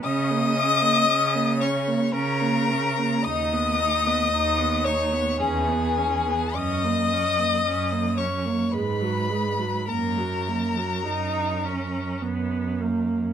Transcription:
<<
  \new Staff \with { instrumentName = "Violin" } { \time 3/4 \key fis \mixolydian \tempo 4 = 54 dis'''4. cis'''8 ais''4 | dis'''4. cis'''8 gis''4 | dis'''4. cis'''8 b''4 | ais''2 r4 | }
  \new Staff \with { instrumentName = "Violin" } { \time 3/4 \key fis \mixolydian dis''4. cis''8 ais'4 | dis''4. cis''8 gis'4 | dis''4. cis''8 b'4 | ais'2 r4 | }
  \new Staff \with { instrumentName = "Viola" } { \time 3/4 \key fis \mixolydian cis'16 ais16 cis'16 ais16 cis'16 ais16 cis'16 ais16 cis'16 ais16 cis'16 ais16 | dis'16 b16 dis'16 b16 dis'16 b16 dis'16 b16 cis'16 b16 cis'16 b16 | cis'16 ais16 cis'16 ais16 cis'16 ais16 cis'16 ais16 gis16 fis16 gis16 fis16 | ais16 fis16 ais16 fis16 dis'8 cis'8 b8 ais8 | }
  \new Staff \with { instrumentName = "Cello" } { \clef bass \time 3/4 \key fis \mixolydian cis4 cis4 cis4 | dis,4 dis,4 e,4 | fis,4 fis,4 gis,4 | fis,4 fis,4 fis,4 | }
>>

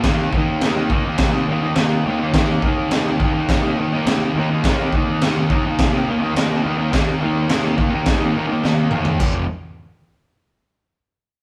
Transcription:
<<
  \new Staff \with { instrumentName = "Distorted electric guitar" } { \time 4/4 \key ees \lydian \tempo 4 = 105 <ees bes ees'>8 <ees bes ees'>8 <ees bes ees'>16 <bes ees'>16 <ees bes ees'>16 <bes ees'>8 <bes ees'>16 <ees bes ees'>16 <bes ees'>16 <ees bes ees'>8 <ees bes ees'>16 <bes ees'>16 | <ees bes ees'>8 <ees bes ees'>8 <ees bes ees'>16 <bes ees'>16 <ees bes ees'>16 <bes ees'>8 <bes ees'>16 <ees bes ees'>16 <bes ees'>16 <ees bes ees'>8 <ees bes ees'>16 <bes ees'>16 | <ees bes ees'>8 <ees bes ees'>8 <ees bes ees'>16 <bes ees'>16 <ees bes ees'>16 <bes ees'>8 <bes ees'>16 <ees bes ees'>16 <bes ees'>16 <ees bes ees'>8 <ees bes ees'>16 <bes ees'>16 | <ees bes ees'>8 <ees bes ees'>8 <ees bes ees'>16 <bes ees'>16 <ees bes ees'>16 <bes ees'>8 <bes ees'>16 <ees bes ees'>16 <bes ees'>16 <ees bes ees'>8 <ees bes ees'>16 <bes ees'>16 |
<f, c f>8 r2. r8 | }
  \new Staff \with { instrumentName = "Fingered electric bass" } { \clef bass \time 4/4 \key ees \lydian ees,8 ees,8 ees,8 ees,8 c8 ees,8 ees,8 ees,8 | ees,8 ees,8 ees,8 ees,8 ees,8 ees8 ees,8 ees,8 | ees,8 ees,8 ees,8 ees,8 c8 ees,8 ees,8 ees,8 | ees,8 ees,8 ees,8 ees,8 ees,8 ees8 ees,8 e,8 |
f,,8 r2. r8 | }
  \new DrumStaff \with { instrumentName = "Drums" } \drummode { \time 4/4 <cymc bd sn>8 bd8 <cymc sn>8 bd8 <cymc bd sn>4 <cymc sn>4 | <cymc bd sn>8 bd8 <cymc sn>8 bd8 <cymc bd sn>4 <cymc sn>4 | <cymc bd sn>8 bd8 <cymc sn>8 bd8 <cymc bd sn>4 <cymc sn>4 | <cymc bd sn>4 <cymc sn>8 bd8 <cymc bd sn>4 sn8 toml16 tomfh16 |
<cymc bd>4 r4 r4 r4 | }
>>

